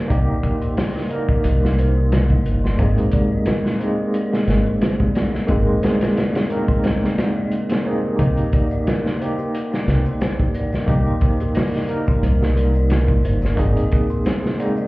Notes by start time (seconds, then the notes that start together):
Already playing: A#3 D#4 G4 A#4 C5 D5 D#5 C6
0.08 C2 A#3 D#4 G4 D5, kick, closed hi-hat
0.28 D#5
0.43 A#4, kick, closed hi-hat
0.61 C6, closed hi-hat
0.77 C5, snare, open hi-hat
0.96 G4, snare
1.09 A#3 D#4 A#4 D5, closed hi-hat
1.29 D#5, kick
1.44 C2 A#4, closed hi-hat
1.63 C6, snare
1.79 C5, closed hi-hat
1.97 G4
2.12 D5, snare, closed hi-hat
2.30 D#5, kick
2.45 G1 A#4, closed hi-hat
2.64 C6, snare
2.78 G#1 G#3 A#3 C4 D#4 C5, kick, closed hi-hat
2.98 G4, closed hi-hat
3.11 D5, kick, closed hi-hat
3.31 D#5
3.46 A#4, snare, closed hi-hat
3.65 C6, snare
3.78 G#3 A#3 C4 D#4 C5, closed hi-hat
3.99 G4
4.14 D5, closed hi-hat
4.33 D#5, snare
4.47 G#1 A#4, snare, closed hi-hat
4.67 C6
4.81 C5, snare, closed hi-hat
5.00 G4, kick
5.15 D5, snare, closed hi-hat
5.34 D#5, snare
5.47 G#1 G#3 A#3 C4 D#4 A#4, kick, closed hi-hat
5.67 C6
5.82 C5, snare, closed hi-hat
6.01 G4, snare, closed hi-hat
6.16 D5, snare, closed hi-hat
6.35 D#5, snare, closed hi-hat
6.50 A#3 C4 D#4 A#4, closed hi-hat
6.68 C6, kick
6.84 C5, snare, closed hi-hat
7.02 G4, snare
7.18 D5, snare, closed hi-hat
7.37 D#5
7.52 A#4, closed hi-hat
7.69 C6, snare, closed hi-hat
7.85 A#3 C4 D#4 G#4 C5
8.05 G4
8.16 C2 A#3 D#4 G4, kick, closed hi-hat, maracas
8.21 C5
8.37 G4, closed hi-hat, maracas
8.53 D5, kick, closed hi-hat
8.71 D#5, maracas
8.87 A#4, snare, closed hi-hat, maracas
9.05 C6, snare, maracas
9.19 A#3 D#4 G4 C5, closed hi-hat
9.38 G4, maracas
9.54 D5, closed hi-hat, maracas
9.72 D#5, snare, maracas
9.88 C2 A#4, snare, closed hi-hat
10.06 C6, maracas
10.21 C5, snare, closed hi-hat, maracas
10.40 G4, kick, maracas
10.54 D5, closed hi-hat
10.72 D#5, snare, maracas
10.86 C2 A#3 D#4 G4 A#4, kick, closed hi-hat, maracas
11.06 C6, maracas
11.21 C5, kick, closed hi-hat
11.40 G4, closed hi-hat, maracas
11.55 D5, snare, open hi-hat, maracas
11.74 D#5, snare, maracas
11.87 A#3 D#4 A#4, closed hi-hat
12.07 C6, kick, maracas
12.22 C2 C5, closed hi-hat, maracas
12.41 G4, snare, maracas
12.57 D5, closed hi-hat
12.75 D#5, maracas
12.89 A#4, snare, closed hi-hat, maracas
13.08 C6, kick, maracas
13.24 G1 C5, closed hi-hat
13.42 G4, snare, maracas
13.56 G#1 A#3 C4 D#4 G#4 D5, kick, closed hi-hat, maracas
13.76 D#5, closed hi-hat, maracas
13.92 A#4, kick, closed hi-hat
14.10 C6, maracas
14.24 C5, snare, closed hi-hat, maracas
14.43 G4, snare, maracas
14.57 G#3 A#3 C4 D#4 D5, closed hi-hat
14.76 D#5, maracas